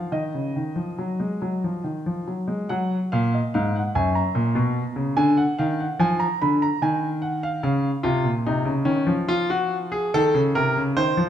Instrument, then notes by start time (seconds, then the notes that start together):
grand piano
Already playing: F3 F5
0.12 D#3 D#5
0.34 C#3
0.56 D#3
0.76 F3
0.98 F#3
1.20 G#3
1.42 F#3
1.64 F3
1.84 D#3
2.06 F3
2.28 F#3
2.48 G#3
2.69 F#3 F#5
3.12 A#2 F5
3.34 D#5
3.54 G#2 F5
3.76 F#5
3.95 F#2 G#5
4.15 A#5
4.35 A#2
4.55 B2
4.96 C#3
5.17 D3 G#5
5.37 F#5
5.59 D#3 F5
5.80 F#5
5.99 F3 G#5
6.20 A#5
6.42 D3 B5
6.62 A#5
6.82 D#3 G#5
7.22 F#5
7.43 F5
7.63 C#3 F5
8.03 C3 F4
8.24 A#2
8.46 C3 D#4
8.65 C#3
8.85 D#3 C#4
9.07 F3
9.29 F4
9.50 F#4
9.92 G#4
10.14 D#3 A4
10.34 C#3
10.55 C3 A#4
10.77 C#3
10.96 D#3 C5
11.17 F3